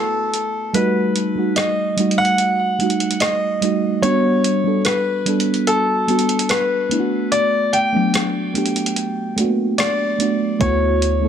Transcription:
Already playing: fm electric piano A3 B3 E4 F#4 A4, grand piano A4
0.34 closed hi-hat
0.73 fm electric piano G3 A3 D#4 F#4, grand piano B4, closed hi-hat
1.16 closed hi-hat
1.35 fm electric piano G3 A3 D#4 F#4
1.56 grand piano D#5, cross-stick, closed hi-hat
1.97 fm electric piano G3 A3 D#4 F#4, closed hi-hat
2.11 closed hi-hat
2.18 grand piano F#5
2.25 closed hi-hat
2.38 closed hi-hat
2.79 fm electric piano G3 A3 D#4 F#4, closed hi-hat
2.90 closed hi-hat
3.00 closed hi-hat
3.11 closed hi-hat
3.20 grand piano D#5, cross-stick, closed hi-hat
3.61 fm electric piano G3 A3 D#4 F#4, closed hi-hat
4.02 fm electric piano G3 B3 D4 F#4, grand piano C#5, closed hi-hat
4.44 closed hi-hat
4.64 fm electric piano G3 B3 D4 A4
4.85 grand piano B4, cross-stick, closed hi-hat
5.25 fm electric piano G3 B3 D4 A4, closed hi-hat
5.40 closed hi-hat
5.54 closed hi-hat
5.67 grand piano A4, closed hi-hat
6.07 fm electric piano G3 B3 D4 F#4, closed hi-hat
6.19 closed hi-hat
6.29 closed hi-hat
6.39 closed hi-hat
6.49 grand piano B4, cross-stick, closed hi-hat
6.89 fm electric piano A3 B3 D4 E4, closed hi-hat
7.00 fm electric piano F#4
7.32 grand piano D5, closed hi-hat
7.73 grand piano G5, closed hi-hat
7.92 fm electric piano F#3 A3 B3 D4
8.14 cross-stick, closed hi-hat
8.54 fm electric piano A3 B3 D4 G4, closed hi-hat
8.66 closed hi-hat
8.76 closed hi-hat
8.86 closed hi-hat
8.96 closed hi-hat
9.36 fm electric piano A3 A#3 D4 F#4, closed hi-hat
9.44 fm electric piano B3
9.78 grand piano D5, cross-stick, closed hi-hat
10.18 fm electric piano A3 B3 D4 F#4, closed hi-hat
10.59 808-style bass D2, fm electric piano A3 B3 E4 F#4, grand piano C#5, kick, closed hi-hat
11.02 closed hi-hat
11.21 fm electric piano A3 B3 E4 A4

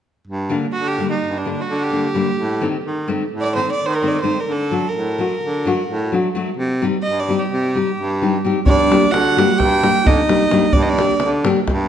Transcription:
0.27 baritone saxophone G2
0.49 nylon-string guitar D3 G3 A#3 D4
0.72 baritone saxophone D3, violin F#4
0.87 violin G4
0.98 nylon-string guitar D3 G3 A#3 D4
1.10 violin D#4
1.22 baritone saxophone G2
1.38 violin D4
1.45 nylon-string guitar D3 G3 A#3 D4
1.60 violin F#4
1.69 baritone saxophone D3
1.83 violin G4
1.91 nylon-string guitar D3 G3 A#3 D4
2.14 nylon-string guitar D3 G3 A#3 D4
2.37 baritone saxophone A2
2.61 nylon-string guitar D#3 A3 C4 D#4
2.84 baritone saxophone D#3
3.08 nylon-string guitar D#3 A3 C4 D#4
3.32 baritone saxophone A2
3.41 violin D5
3.55 nylon-string guitar D#3 A3 C4 D#4, violin C5
3.72 violin D5
3.80 baritone saxophone D#3
3.86 violin C5
3.95 violin A#4
4.02 nylon-string guitar D#3 A3 C4 D#4
4.07 violin D5
4.20 nylon-string guitar D#3 A3 C4, violin C5
4.25 nylon-string guitar D#4
4.40 violin A#4
4.47 baritone saxophone D3
4.52 violin A4
4.71 nylon-string guitar F#3 A3 D4 F#4
4.88 violin A#4
4.94 baritone saxophone A2
5.18 nylon-string guitar F#3 A3 D4 F#4
5.42 baritone saxophone D3
5.65 nylon-string guitar F#3 A3 D4 F#4
5.89 baritone saxophone A2
6.12 nylon-string guitar F#3 A3 D4 F#4
6.35 nylon-string guitar F#3 A3 D4 F#4
6.57 baritone saxophone C3
6.82 nylon-string guitar G3 C4 D#4 G4
7.03 baritone saxophone G2, violin D#5
7.19 violin D5
7.28 nylon-string guitar G3 C4 D#4 G4
7.38 violin G4
7.51 baritone saxophone C3
7.75 nylon-string guitar G3 C4 D#4 G4
7.98 baritone saxophone G2
8.22 nylon-string guitar G3 C4 D#4 G4
8.45 nylon-string guitar G3 C4 D#4 G4
8.65 baritone saxophone G2, clarinet D4, violin D5, davul low
8.79 davul high
8.90 nylon-string guitar G3 A#3 D4 G4, davul high
9.02 davul high
9.11 baritone saxophone D3, clarinet F#4, violin F#5, davul high
9.37 nylon-string guitar G3 A#3 D4 G4, davul high
9.49 davul high
9.57 baritone saxophone G2, clarinet G4, violin G5, davul high, davul low
9.71 davul high
9.83 nylon-string guitar G3 A#3 D4 G4, davul high
9.95 davul high
10.05 baritone saxophone D3, clarinet D#4, violin D#5, davul low
10.18 davul high
10.28 nylon-string guitar G3 A#3 D4 G4, davul high
10.51 nylon-string guitar G3 A#3 D4 G4, davul high
10.62 davul high
10.72 baritone saxophone G2, clarinet D4, violin D5, davul low
10.81 clarinet D#4, violin D#5
10.86 clarinet D4, violin D5, davul high
10.98 nylon-string guitar G3 A#3 D4 G4, davul high
11.09 davul high
11.20 baritone saxophone D3, davul high
11.44 nylon-string guitar G3 A#3 D4 G4, davul high
11.57 davul high
11.68 baritone saxophone G2, davul high, davul low
11.81 davul high

